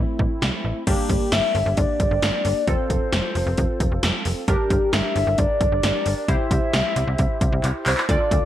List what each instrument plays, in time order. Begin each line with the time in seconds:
Already playing: analog polysynth A3 C4 E4
0.19 fm bass A1, kick
0.42 fm bass C2, snare
0.65 fm bass A1
0.87 fm bass G1, analog polysynth A#3 D4 G4, soft synth lead G4, kick, closed hi-hat, crash
1.09 fm bass G1, kick, closed hi-hat
1.32 fm bass G1, soft synth lead E5, snare, closed hi-hat
1.55 fm bass G1, open hi-hat
1.66 fm bass G1
1.77 fm bass G1, soft synth lead D5, kick, closed hi-hat
2.00 fm bass G1, kick, closed hi-hat
2.11 fm bass G1
2.22 fm bass G1, snare, closed hi-hat
2.45 fm bass G1, open hi-hat
2.67 fm bass F1, analog polysynth C4 F4 A4, soft synth lead C5, kick, closed hi-hat
2.90 fm bass F1, kick, closed hi-hat
3.12 fm bass F1, snare, closed hi-hat
3.35 fm bass F1, open hi-hat
3.46 fm bass F1
3.57 fm bass F1, kick, closed hi-hat
3.80 fm bass F1, kick, closed hi-hat
3.92 fm bass F1
4.03 fm bass F1, snare, closed hi-hat
4.25 fm bass F1, open hi-hat
4.48 fm bass G1, analog polysynth D4 G4 A#4, soft synth lead G4, kick, closed hi-hat
4.70 fm bass G1, kick, closed hi-hat
4.93 fm bass G1, soft synth lead E5, snare, closed hi-hat
5.16 fm bass G1, open hi-hat
5.27 fm bass G1
5.38 fm bass G1, soft synth lead D5, kick, closed hi-hat
5.61 fm bass G1, kick, closed hi-hat
5.72 fm bass G1
5.83 fm bass G1, snare, closed hi-hat
6.06 fm bass G1, open hi-hat
6.28 fm bass C2, analog polysynth E4 G4 C5, soft synth lead E5, kick, closed hi-hat
6.51 fm bass C2, kick, closed hi-hat
6.73 fm bass C2, snare, closed hi-hat
6.96 fm bass C2, closed hi-hat
7.07 fm bass C2
7.18 fm bass C2, kick, closed hi-hat
7.41 fm bass C2, kick, closed hi-hat
7.52 fm bass C2
7.64 fm bass C2, clap, closed hi-hat
7.86 fm bass C2, soft synth lead C5, clap, open hi-hat
7.98 clap
8.09 fm bass D2, analog polysynth F4 A4 D5, soft synth lead D5, kick, closed hi-hat
8.31 fm bass D2, kick, closed hi-hat